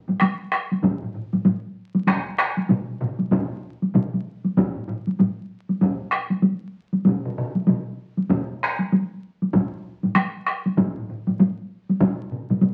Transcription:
0.08 taiko low-mid, taiko high
0.21 taiko rim, taiko high
0.52 taiko rim
0.72 taiko high
0.82 taiko, taiko low-mid, taiko high
1.02 taiko low-mid
1.14 taiko low-mid
1.33 taiko low-mid, taiko high
1.45 taiko low-mid, taiko high
1.95 taiko high
2.07 taiko rim, taiko, taiko high
2.39 taiko rim
2.57 taiko high
2.69 taiko low-mid, taiko mid, taiko high
3.00 taiko low-mid, taiko mid
3.19 taiko high
3.31 taiko, taiko low-mid, taiko mid, taiko high
3.82 taiko high
3.94 taiko low-mid, taiko mid, taiko high
4.14 taiko high
4.44 taiko high
4.57 taiko, taiko low-mid, taiko high
4.75 taiko low-mid
4.88 taiko low-mid
5.07 taiko high
5.19 taiko low-mid, taiko high
5.69 taiko high
5.81 taiko, taiko low-mid, taiko high
6.12 taiko rim
6.30 taiko high
6.42 taiko high
6.93 taiko high
7.05 taiko, taiko mid, taiko high
7.26 taiko mid
7.38 taiko mid
7.55 taiko high
7.67 taiko mid, taiko high
8.17 taiko high
8.30 taiko, taiko mid, taiko high
8.63 taiko rim
8.79 taiko high
8.92 taiko high
9.42 taiko high
9.54 taiko, taiko low-mid, taiko high
10.03 taiko low-mid, taiko high
10.15 taiko rim, taiko high
10.47 taiko rim
10.66 taiko high
10.77 taiko, taiko low-mid, taiko high
10.97 taiko low-mid
11.09 taiko low-mid
11.27 taiko low-mid, taiko high
11.39 taiko low-mid, taiko high
11.89 taiko high
12.00 taiko, taiko low-mid, taiko mid, taiko high
12.31 taiko low-mid, taiko mid
12.50 taiko low-mid, taiko mid, taiko high
12.61 taiko low-mid, taiko mid, taiko high

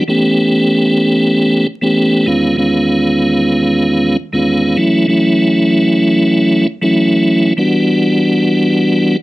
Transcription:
0.08 E3 A3 B3 C#4 G4
1.82 E3 A3 B3 C#4 G4
2.26 E2 D#3 G#3 B3 C#4 F4
2.57 E2 D#3 G#3 B3 C#4 F4
4.32 E2 D#3 G#3 B3 C#4 F4
4.77 E3 F#3 A3 C#4 E4
5.07 E3 F#3 A3 C#4 E4
6.82 E3 F#3 A3 C#4 E4
7.57 E3 G3 B3 D4 F#4

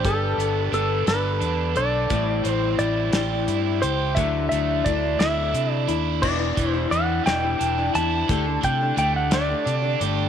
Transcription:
Already playing: G4
0.05 G1 G3 B3 D4 A4, kick, closed hi-hat
0.38 G1 B3, closed hi-hat
0.72 G1 G3 B3 D4 A4, closed hi-hat
1.07 G1 G3 B3 D4 A4 B4, snare, closed hi-hat
1.40 E2 D4, closed hi-hat
1.75 B1 B3 D4 A4 D5, closed hi-hat
2.10 A1 A2 G3 C4 E4 G4, kick, closed hi-hat
2.44 A1 C4, closed hi-hat
2.51 C5
2.79 A1 G3 C4 E4 G4 D5, closed hi-hat
3.13 A1 A2 G3 C4 E4 G4, snare, closed hi-hat
3.48 G2 E4, closed hi-hat
3.81 C#2 C4 E4 G4 C5, closed hi-hat
4.15 D2 D3 F#3 A3 D4 E4 E5, kick, closed hi-hat
4.49 D2 A3 E5, closed hi-hat
4.84 D2 F#3 A3 D4 E4 D5, kick, closed hi-hat
5.19 D2 D3 F#3 A3 D4 E4 E5, snare, closed hi-hat
5.54 C3 D4, closed hi-hat
5.73 D5
5.88 D#2 A3 D4 E4, closed hi-hat
6.22 E1 E2 B2 E3 G3 D4 E4 D5, kick, crash
6.39 E3 G3 D4 E4
6.57 E1 E3, kick, closed hi-hat
6.71 D4 E4 C5
6.75 E3 G3
6.90 E2 E3 G3 D4 E4 F#5, closed hi-hat
7.26 E1 E2 B2 E3 G3 D4 E4 G5, snare, closed hi-hat
7.43 E3 G3 D4 E4
7.59 E1 D4, closed hi-hat
7.78 E3 G3 D4 E4
7.95 E2 E3 G3 D4 E4 A5, closed hi-hat
8.29 D2 D3 A3 D4 G4, kick, closed hi-hat
8.47 A3 D4 G4
8.62 C3 D3 G5, kick, closed hi-hat
8.81 A3 D4 G4
8.97 D2 D3 A3 D4 G4 G5, closed hi-hat
9.16 F#5
9.31 D3 A3 D4 G4 D5, snare, closed hi-hat
9.49 A3 D4 G4
9.66 C3 D4, closed hi-hat
9.82 A3 D4 G4
10.00 G1 D3 A3 D4 G4, closed hi-hat

